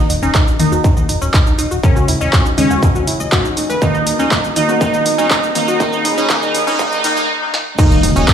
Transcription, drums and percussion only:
0.10 open hi-hat, shaker
0.23 shaker
0.35 kick, clap, shaker
0.47 shaker
0.60 open hi-hat, shaker
0.72 mid tom, shaker
0.84 kick, shaker
0.97 shaker
1.09 open hi-hat, shaker
1.22 shaker
1.34 kick, clap, shaker
1.47 shaker
1.59 open hi-hat, shaker
1.71 shaker
1.84 kick, shaker
1.96 shaker
2.08 open hi-hat, mid tom, shaker
2.21 shaker
2.33 kick, clap, shaker
2.46 shaker
2.58 open hi-hat, shaker
2.71 mid tom, shaker
2.83 kick, shaker
2.95 shaker
3.07 open hi-hat, shaker
3.20 shaker
3.32 kick, clap, shaker
3.45 shaker
3.57 open hi-hat, shaker
3.70 mid tom, shaker
3.82 kick, shaker
3.95 shaker
4.07 open hi-hat, shaker
4.19 shaker
4.31 kick, clap, shaker
4.44 shaker
4.56 open hi-hat, shaker
4.69 mid tom, shaker
4.81 kick, shaker
4.94 shaker
5.06 open hi-hat, shaker
5.18 shaker
5.31 kick, clap, shaker
5.43 shaker
5.55 open hi-hat, shaker
5.68 shaker
5.80 kick, shaker
5.93 shaker
6.05 open hi-hat, mid tom, shaker
6.18 shaker
6.30 kick, clap, shaker
6.42 shaker
6.55 open hi-hat, shaker
6.67 mid tom, shaker
6.79 kick, shaker
6.92 shaker
7.04 open hi-hat, shaker
7.17 shaker
7.54 snare
7.79 kick, crash, shaker
7.91 shaker
8.03 open hi-hat, mid tom, shaker
8.16 shaker
8.28 kick, clap, shaker

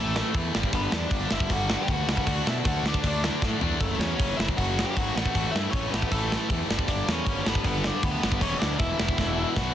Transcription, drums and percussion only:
0.16 snare
0.34 kick, open hi-hat
0.55 snare
0.63 kick
0.73 kick, open hi-hat
0.92 snare
1.11 kick, open hi-hat
1.31 snare
1.40 kick
1.50 kick, open hi-hat
1.70 snare
1.88 kick, open hi-hat
2.09 snare
2.17 kick
2.27 kick, open hi-hat
2.47 snare
2.65 kick, open hi-hat
2.86 snare
2.94 kick
3.04 kick, open hi-hat
3.24 snare
3.42 kick, snare
3.61 floor tom
3.80 kick, open hi-hat
4.01 snare
4.20 kick, open hi-hat
4.40 snare
4.48 kick
4.58 kick, open hi-hat
4.79 snare
4.97 kick, open hi-hat
5.17 snare
5.25 kick
5.35 kick, open hi-hat
5.56 snare
5.73 kick, open hi-hat
5.94 snare
6.02 kick
6.12 kick, open hi-hat
6.32 snare
6.50 kick, open hi-hat
6.71 snare
6.79 kick
6.88 kick, open hi-hat
7.09 snare
7.26 kick, open hi-hat
7.46 snare
7.55 kick
7.64 kick, open hi-hat
7.84 snare
8.03 kick, open hi-hat
8.23 snare
8.32 kick
8.41 kick, open hi-hat
8.62 snare
8.79 kick, open hi-hat
8.99 snare
9.08 kick
9.18 kick, snare
9.56 kick, snare

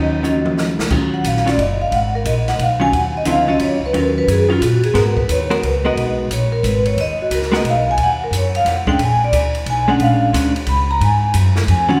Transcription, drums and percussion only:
0.24 hi-hat pedal, mid tom
0.46 mid tom
0.57 snare
0.79 snare
0.90 kick, crash
1.24 kick, hi-hat pedal, ride
1.36 snare
1.47 snare, ride
1.58 kick, ride
1.91 kick, ride
2.25 kick, hi-hat pedal, ride
2.48 snare, ride
2.59 kick, ride
2.92 kick, ride
3.25 kick, hi-hat pedal, ride
3.59 kick, ride
3.94 kick, ride
4.28 kick, hi-hat pedal, ride
4.61 kick, hi-hat pedal, ride
4.83 ride
4.95 kick, snare, ride
5.17 kick
5.29 kick, hi-hat pedal, ride
5.51 ride
5.62 kick, ride
5.96 kick, ride
6.30 kick, hi-hat pedal, ride
6.63 kick, hi-hat pedal, ride
6.85 ride
6.97 kick, ride
7.31 kick, hi-hat pedal, ride
7.42 snare
7.53 snare
7.64 kick, ride
7.98 kick, ride
8.32 kick, hi-hat pedal, ride
8.55 ride
8.65 kick, snare, ride
8.87 kick
8.99 kick, ride
9.32 kick, hi-hat pedal, ride
9.55 ride
9.66 kick, ride
10.00 kick, ride
10.34 kick, hi-hat pedal, ride
10.56 ride
10.66 kick, ride
11.01 kick, ride
11.34 kick, hi-hat pedal, ride
11.56 snare
11.68 kick, ride

